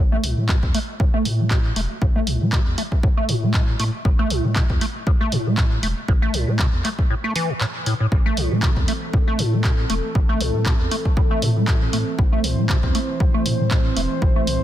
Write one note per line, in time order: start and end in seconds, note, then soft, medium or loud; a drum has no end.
0.00 0.18 A1 loud
0.12 0.25 A3 loud
0.24 0.34 C2 medium
0.24 0.39 A2 loud
0.24 open hi-hat loud
0.38 0.57 A2 medium
0.38 0.47 A3 loud
0.49 0.57 B2 medium
0.49 kick loud
0.49 clap loud
0.63 0.72 E2 medium
0.63 kick medium
0.74 0.79 A3 loud
0.74 open hi-hat medium
1.00 1.05 A2 medium
1.00 kick loud
1.14 1.27 A3 loud
1.25 1.72 A2 medium
1.25 1.41 A2 loud
1.25 open hi-hat loud
1.39 1.49 A3 loud
1.51 1.58 B2 medium
1.51 kick loud
1.51 clap loud
1.76 1.87 E1 medium
1.76 1.81 A3 loud
1.76 open hi-hat medium
2.02 2.22 A1 loud
2.02 2.06 A2 medium
2.02 kick loud
2.16 2.29 A3 loud
2.27 2.38 C2 medium
2.27 2.43 A2 loud
2.27 open hi-hat medium
2.41 2.60 A2 medium
2.41 2.51 A3 loud
2.52 2.60 B2 medium
2.52 kick loud
2.52 clap loud
2.67 2.75 E2 medium
2.78 2.83 A3 loud
2.78 open hi-hat medium
2.92 kick medium
3.03 3.08 A2 medium
3.03 kick loud
3.17 3.30 A3 loud
3.29 3.75 A2 medium
3.29 3.44 A2 loud
3.29 open hi-hat loud
3.43 3.52 A3 medium
3.54 3.62 B2 medium
3.54 kick loud
3.54 clap loud
3.80 3.90 A2 loud
3.80 3.84 A3 loud
3.80 open hi-hat medium
4.05 4.25 A1 loud
4.05 4.10 A2 medium
4.05 kick loud
4.19 4.32 A3 loud
4.30 4.41 C2 medium
4.30 4.46 A2 medium
4.30 open hi-hat medium
4.44 4.63 A2 medium
4.44 4.54 A3 loud
4.56 4.64 B2 medium
4.56 kick loud
4.56 clap loud
4.70 4.79 E2 medium
4.70 kick medium
4.81 4.86 A3 loud
4.81 open hi-hat medium
5.07 5.11 A2 medium
5.07 kick loud
5.21 5.34 A3 loud
5.32 5.48 A2 medium
5.32 5.79 A2 medium
5.32 open hi-hat medium
5.46 5.56 A3 loud
5.57 5.65 B2 medium
5.57 kick loud
5.57 clap loud
5.83 5.94 E1 medium
5.83 5.88 A3 loud
5.83 open hi-hat medium
6.08 6.29 A1 loud
6.08 6.13 A2 medium
6.08 kick loud
6.22 6.35 A3 loud
6.34 6.45 C2 medium
6.34 6.49 A2 loud
6.34 open hi-hat medium
6.48 6.67 A2 medium
6.48 6.57 A3 loud
6.59 6.67 B2 medium
6.59 kick loud
6.59 clap loud
6.73 6.82 E2 medium
6.85 6.89 A3 loud
6.85 clap soft
6.85 open hi-hat medium
6.99 kick medium
7.10 7.15 A2 medium
7.24 7.34 A3 loud
7.36 7.51 E3 loud
7.36 open hi-hat loud
7.50 7.53 A2 medium
7.61 7.66 A2 loud
7.61 clap loud
7.86 7.94 A2 medium
7.86 open hi-hat medium
8.00 8.07 A2 medium
8.12 8.32 A1 loud
8.12 8.16 A2 medium
8.12 14.64 E3 medium
8.12 14.64 C4 medium
8.12 12.17 A4 medium
8.12 kick loud
8.26 8.39 A3 loud
8.37 8.48 C2 medium
8.37 8.53 A2 loud
8.37 open hi-hat medium
8.51 8.70 A2 medium
8.51 8.61 A3 loud
8.62 8.70 B2 medium
8.62 kick loud
8.62 clap loud
8.77 8.85 E2 medium
8.77 kick medium
8.88 8.93 A3 loud
8.88 open hi-hat medium
9.13 9.18 A2 medium
9.13 kick loud
9.28 9.41 A3 loud
9.39 9.86 A2 medium
9.39 9.54 A2 medium
9.39 open hi-hat loud
9.53 9.62 A3 loud
9.64 9.72 B2 medium
9.64 kick loud
9.64 clap loud
9.90 10.01 E1 medium
9.90 9.94 A3 loud
9.90 open hi-hat medium
10.15 10.35 A1 medium
10.15 10.20 A2 medium
10.15 kick loud
10.29 10.42 A3 loud
10.41 10.51 C2 medium
10.41 10.56 A2 medium
10.41 open hi-hat loud
10.54 10.74 A2 medium
10.54 10.64 A3 loud
10.66 10.74 B2 medium
10.66 kick loud
10.66 clap loud
10.80 10.89 E2 medium
10.91 10.96 A3 loud
10.91 open hi-hat medium
11.05 kick medium
11.17 11.21 A2 medium
11.17 kick loud
11.31 11.44 A3 loud
11.42 11.58 A2 loud
11.42 11.89 A2 medium
11.42 open hi-hat loud
11.56 11.66 A3 loud
11.68 11.75 B2 medium
11.68 kick loud
11.68 clap loud
11.93 12.04 A2 loud
11.93 11.98 A3 loud
11.93 open hi-hat medium
12.19 12.39 A1 loud
12.19 12.23 A2 medium
12.19 14.64 C5 medium
12.19 kick loud
12.32 12.45 A3 medium
12.44 12.55 C2 medium
12.44 12.59 A2 loud
12.44 open hi-hat loud
12.58 12.77 A2 medium
12.58 12.67 A3 loud
12.69 12.77 B2 medium
12.69 kick loud
12.69 clap loud
12.83 12.92 E2 medium
12.83 kick medium
12.95 12.99 A3 loud
12.95 open hi-hat medium
13.20 13.25 A2 medium
13.20 kick loud
13.34 13.47 A3 loud
13.46 13.61 A2 loud
13.46 13.92 A2 medium
13.46 open hi-hat loud
13.60 13.69 A3 loud
13.71 13.79 B2 medium
13.71 kick loud
13.71 clap loud
13.97 14.07 E1 medium
13.97 14.01 A3 loud
13.97 open hi-hat medium
14.22 14.42 A1 loud
14.22 14.27 A2 medium
14.22 kick loud
14.36 14.49 A3 loud
14.47 14.58 C2 medium
14.47 14.63 A2 loud
14.47 open hi-hat loud